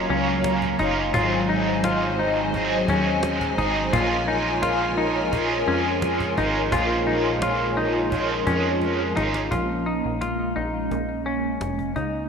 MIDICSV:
0, 0, Header, 1, 6, 480
1, 0, Start_track
1, 0, Key_signature, -5, "minor"
1, 0, Tempo, 697674
1, 788, Time_signature, 4, 2, 24, 8
1, 8455, End_track
2, 0, Start_track
2, 0, Title_t, "Analog synth pad"
2, 0, Program_c, 0, 89
2, 0, Note_on_c, 0, 54, 81
2, 0, Note_on_c, 0, 73, 81
2, 0, Note_on_c, 0, 77, 78
2, 0, Note_on_c, 0, 82, 94
2, 768, Note_off_c, 0, 82, 0
2, 769, Note_off_c, 0, 73, 0
2, 770, Note_off_c, 0, 77, 0
2, 786, Note_on_c, 0, 75, 68
2, 786, Note_on_c, 0, 80, 90
2, 788, Note_on_c, 0, 72, 74
2, 2679, Note_off_c, 0, 54, 0
2, 2688, Note_off_c, 0, 75, 0
2, 2689, Note_off_c, 0, 72, 0
2, 2710, Note_on_c, 0, 65, 84
2, 2711, Note_on_c, 0, 70, 80
2, 2713, Note_on_c, 0, 73, 80
2, 4612, Note_off_c, 0, 73, 0
2, 4639, Note_on_c, 0, 73, 81
2, 6520, Note_off_c, 0, 80, 0
2, 6522, Note_off_c, 0, 65, 0
2, 6522, Note_off_c, 0, 70, 0
2, 6535, Note_off_c, 0, 73, 0
2, 6538, Note_on_c, 0, 58, 62
2, 6541, Note_on_c, 0, 56, 68
2, 6544, Note_on_c, 0, 61, 81
2, 8444, Note_off_c, 0, 58, 0
2, 8445, Note_off_c, 0, 56, 0
2, 8455, Note_off_c, 0, 61, 0
2, 8455, End_track
3, 0, Start_track
3, 0, Title_t, "Clean electric guitar"
3, 0, Program_c, 1, 27
3, 70, Note_on_c, 1, 61, 70
3, 543, Note_off_c, 1, 61, 0
3, 546, Note_on_c, 1, 63, 76
3, 783, Note_on_c, 1, 65, 98
3, 787, Note_off_c, 1, 63, 0
3, 1026, Note_off_c, 1, 65, 0
3, 1027, Note_on_c, 1, 63, 82
3, 1268, Note_off_c, 1, 63, 0
3, 1269, Note_on_c, 1, 65, 77
3, 1509, Note_off_c, 1, 65, 0
3, 1509, Note_on_c, 1, 63, 70
3, 1988, Note_off_c, 1, 63, 0
3, 1991, Note_on_c, 1, 61, 68
3, 2462, Note_off_c, 1, 61, 0
3, 2464, Note_on_c, 1, 63, 74
3, 2704, Note_on_c, 1, 65, 90
3, 2707, Note_off_c, 1, 63, 0
3, 2944, Note_on_c, 1, 63, 79
3, 2946, Note_off_c, 1, 65, 0
3, 3181, Note_on_c, 1, 65, 78
3, 3187, Note_off_c, 1, 63, 0
3, 3423, Note_on_c, 1, 63, 75
3, 3425, Note_off_c, 1, 65, 0
3, 3904, Note_off_c, 1, 63, 0
3, 3906, Note_on_c, 1, 61, 75
3, 4386, Note_off_c, 1, 61, 0
3, 4388, Note_on_c, 1, 63, 75
3, 4625, Note_on_c, 1, 65, 93
3, 4629, Note_off_c, 1, 63, 0
3, 4863, Note_on_c, 1, 63, 72
3, 4867, Note_off_c, 1, 65, 0
3, 5106, Note_off_c, 1, 63, 0
3, 5109, Note_on_c, 1, 65, 72
3, 5345, Note_on_c, 1, 63, 78
3, 5349, Note_off_c, 1, 65, 0
3, 5823, Note_off_c, 1, 63, 0
3, 5826, Note_on_c, 1, 61, 78
3, 6302, Note_off_c, 1, 61, 0
3, 6305, Note_on_c, 1, 63, 76
3, 6544, Note_on_c, 1, 65, 74
3, 6547, Note_off_c, 1, 63, 0
3, 6785, Note_on_c, 1, 63, 64
3, 6786, Note_off_c, 1, 65, 0
3, 7025, Note_on_c, 1, 65, 56
3, 7027, Note_off_c, 1, 63, 0
3, 7264, Note_on_c, 1, 63, 65
3, 7267, Note_off_c, 1, 65, 0
3, 7744, Note_off_c, 1, 63, 0
3, 7746, Note_on_c, 1, 61, 65
3, 8225, Note_off_c, 1, 61, 0
3, 8227, Note_on_c, 1, 63, 64
3, 8455, Note_off_c, 1, 63, 0
3, 8455, End_track
4, 0, Start_track
4, 0, Title_t, "Overdriven electric guitar"
4, 0, Program_c, 2, 29
4, 0, Note_on_c, 2, 54, 60
4, 0, Note_on_c, 2, 58, 73
4, 0, Note_on_c, 2, 61, 80
4, 0, Note_on_c, 2, 65, 72
4, 533, Note_off_c, 2, 65, 0
4, 541, Note_on_c, 2, 65, 60
4, 546, Note_off_c, 2, 61, 0
4, 549, Note_off_c, 2, 58, 0
4, 554, Note_on_c, 2, 61, 55
4, 562, Note_off_c, 2, 54, 0
4, 565, Note_on_c, 2, 58, 48
4, 775, Note_on_c, 2, 44, 82
4, 785, Note_off_c, 2, 65, 0
4, 789, Note_on_c, 2, 51, 89
4, 791, Note_off_c, 2, 61, 0
4, 795, Note_on_c, 2, 54, 77
4, 797, Note_off_c, 2, 58, 0
4, 800, Note_on_c, 2, 56, 93
4, 808, Note_on_c, 2, 60, 93
4, 812, Note_on_c, 2, 68, 84
4, 1737, Note_off_c, 2, 54, 0
4, 1742, Note_off_c, 2, 44, 0
4, 1745, Note_on_c, 2, 54, 59
4, 1749, Note_off_c, 2, 51, 0
4, 1751, Note_off_c, 2, 56, 0
4, 1753, Note_off_c, 2, 60, 0
4, 1754, Note_on_c, 2, 56, 58
4, 1761, Note_on_c, 2, 60, 66
4, 1766, Note_off_c, 2, 68, 0
4, 1769, Note_on_c, 2, 68, 76
4, 2461, Note_off_c, 2, 68, 0
4, 2464, Note_on_c, 2, 68, 59
4, 2465, Note_off_c, 2, 60, 0
4, 2467, Note_off_c, 2, 54, 0
4, 2473, Note_on_c, 2, 60, 64
4, 2479, Note_off_c, 2, 56, 0
4, 2482, Note_on_c, 2, 56, 54
4, 2487, Note_on_c, 2, 54, 48
4, 2698, Note_on_c, 2, 46, 86
4, 2706, Note_off_c, 2, 68, 0
4, 2708, Note_off_c, 2, 54, 0
4, 2710, Note_off_c, 2, 56, 0
4, 2711, Note_off_c, 2, 60, 0
4, 2711, Note_on_c, 2, 53, 89
4, 2718, Note_on_c, 2, 56, 90
4, 2725, Note_on_c, 2, 61, 83
4, 2734, Note_on_c, 2, 65, 92
4, 3651, Note_off_c, 2, 53, 0
4, 3654, Note_on_c, 2, 53, 61
4, 3661, Note_off_c, 2, 56, 0
4, 3663, Note_off_c, 2, 46, 0
4, 3664, Note_on_c, 2, 56, 76
4, 3670, Note_off_c, 2, 61, 0
4, 3673, Note_on_c, 2, 61, 73
4, 3676, Note_off_c, 2, 65, 0
4, 3679, Note_on_c, 2, 65, 74
4, 4380, Note_off_c, 2, 65, 0
4, 4383, Note_on_c, 2, 65, 61
4, 4390, Note_off_c, 2, 61, 0
4, 4392, Note_on_c, 2, 61, 54
4, 4398, Note_off_c, 2, 56, 0
4, 4401, Note_on_c, 2, 56, 51
4, 4608, Note_on_c, 2, 46, 86
4, 4620, Note_off_c, 2, 53, 0
4, 4622, Note_off_c, 2, 56, 0
4, 4622, Note_on_c, 2, 53, 85
4, 4626, Note_off_c, 2, 65, 0
4, 4631, Note_off_c, 2, 61, 0
4, 4631, Note_on_c, 2, 56, 96
4, 4638, Note_on_c, 2, 61, 87
4, 4645, Note_on_c, 2, 65, 90
4, 5569, Note_off_c, 2, 53, 0
4, 5572, Note_on_c, 2, 53, 64
4, 5578, Note_off_c, 2, 46, 0
4, 5584, Note_off_c, 2, 56, 0
4, 5587, Note_on_c, 2, 56, 68
4, 5588, Note_off_c, 2, 61, 0
4, 5591, Note_on_c, 2, 61, 61
4, 5598, Note_off_c, 2, 65, 0
4, 5600, Note_on_c, 2, 65, 72
4, 6294, Note_off_c, 2, 65, 0
4, 6296, Note_on_c, 2, 65, 62
4, 6308, Note_off_c, 2, 61, 0
4, 6310, Note_on_c, 2, 61, 55
4, 6321, Note_off_c, 2, 56, 0
4, 6323, Note_on_c, 2, 56, 42
4, 6542, Note_off_c, 2, 65, 0
4, 6549, Note_off_c, 2, 61, 0
4, 6556, Note_off_c, 2, 56, 0
4, 6900, Note_off_c, 2, 53, 0
4, 8455, End_track
5, 0, Start_track
5, 0, Title_t, "Analog synth bass"
5, 0, Program_c, 3, 38
5, 65, Note_on_c, 3, 37, 100
5, 523, Note_off_c, 3, 37, 0
5, 549, Note_on_c, 3, 30, 86
5, 777, Note_off_c, 3, 30, 0
5, 786, Note_on_c, 3, 32, 117
5, 1960, Note_off_c, 3, 32, 0
5, 1982, Note_on_c, 3, 39, 98
5, 2441, Note_off_c, 3, 39, 0
5, 2460, Note_on_c, 3, 32, 88
5, 2692, Note_off_c, 3, 32, 0
5, 2706, Note_on_c, 3, 34, 124
5, 3880, Note_off_c, 3, 34, 0
5, 3904, Note_on_c, 3, 41, 98
5, 4362, Note_off_c, 3, 41, 0
5, 4388, Note_on_c, 3, 32, 100
5, 4616, Note_off_c, 3, 32, 0
5, 4627, Note_on_c, 3, 34, 126
5, 5800, Note_off_c, 3, 34, 0
5, 5826, Note_on_c, 3, 41, 88
5, 6283, Note_off_c, 3, 41, 0
5, 6312, Note_on_c, 3, 32, 97
5, 6538, Note_off_c, 3, 32, 0
5, 6548, Note_on_c, 3, 34, 102
5, 6891, Note_off_c, 3, 34, 0
5, 6916, Note_on_c, 3, 34, 82
5, 7254, Note_off_c, 3, 34, 0
5, 7268, Note_on_c, 3, 34, 92
5, 7496, Note_off_c, 3, 34, 0
5, 7509, Note_on_c, 3, 34, 99
5, 7965, Note_off_c, 3, 34, 0
5, 7986, Note_on_c, 3, 29, 86
5, 8215, Note_off_c, 3, 29, 0
5, 8229, Note_on_c, 3, 37, 78
5, 8455, Note_off_c, 3, 37, 0
5, 8455, End_track
6, 0, Start_track
6, 0, Title_t, "Cajon"
6, 305, Note_on_c, 9, 38, 110
6, 374, Note_off_c, 9, 38, 0
6, 427, Note_on_c, 9, 36, 59
6, 496, Note_off_c, 9, 36, 0
6, 545, Note_on_c, 9, 36, 68
6, 614, Note_off_c, 9, 36, 0
6, 785, Note_on_c, 9, 36, 126
6, 853, Note_off_c, 9, 36, 0
6, 1264, Note_on_c, 9, 38, 118
6, 1333, Note_off_c, 9, 38, 0
6, 1747, Note_on_c, 9, 36, 74
6, 1816, Note_off_c, 9, 36, 0
6, 1984, Note_on_c, 9, 36, 89
6, 2052, Note_off_c, 9, 36, 0
6, 2221, Note_on_c, 9, 38, 110
6, 2290, Note_off_c, 9, 38, 0
6, 2347, Note_on_c, 9, 36, 65
6, 2416, Note_off_c, 9, 36, 0
6, 2467, Note_on_c, 9, 36, 72
6, 2535, Note_off_c, 9, 36, 0
6, 2706, Note_on_c, 9, 36, 124
6, 2775, Note_off_c, 9, 36, 0
6, 3184, Note_on_c, 9, 38, 104
6, 3253, Note_off_c, 9, 38, 0
6, 3666, Note_on_c, 9, 36, 102
6, 3735, Note_off_c, 9, 36, 0
6, 4143, Note_on_c, 9, 38, 109
6, 4212, Note_off_c, 9, 38, 0
6, 4268, Note_on_c, 9, 36, 69
6, 4337, Note_off_c, 9, 36, 0
6, 4386, Note_on_c, 9, 36, 78
6, 4455, Note_off_c, 9, 36, 0
6, 4624, Note_on_c, 9, 36, 117
6, 4627, Note_off_c, 9, 36, 0
6, 4627, Note_on_c, 9, 36, 114
6, 4695, Note_off_c, 9, 36, 0
6, 5104, Note_on_c, 9, 38, 120
6, 5173, Note_off_c, 9, 38, 0
6, 5587, Note_on_c, 9, 36, 100
6, 5656, Note_off_c, 9, 36, 0
6, 5826, Note_on_c, 9, 36, 88
6, 5895, Note_off_c, 9, 36, 0
6, 6064, Note_on_c, 9, 38, 53
6, 6133, Note_off_c, 9, 38, 0
6, 6309, Note_on_c, 9, 38, 87
6, 6378, Note_off_c, 9, 38, 0
6, 6428, Note_on_c, 9, 38, 99
6, 6497, Note_off_c, 9, 38, 0
6, 6548, Note_on_c, 9, 36, 99
6, 6617, Note_off_c, 9, 36, 0
6, 7029, Note_on_c, 9, 38, 88
6, 7097, Note_off_c, 9, 38, 0
6, 7508, Note_on_c, 9, 36, 84
6, 7512, Note_off_c, 9, 36, 0
6, 7512, Note_on_c, 9, 36, 60
6, 7581, Note_off_c, 9, 36, 0
6, 7988, Note_on_c, 9, 38, 97
6, 8056, Note_off_c, 9, 38, 0
6, 8111, Note_on_c, 9, 36, 53
6, 8180, Note_off_c, 9, 36, 0
6, 8228, Note_on_c, 9, 36, 59
6, 8297, Note_off_c, 9, 36, 0
6, 8455, End_track
0, 0, End_of_file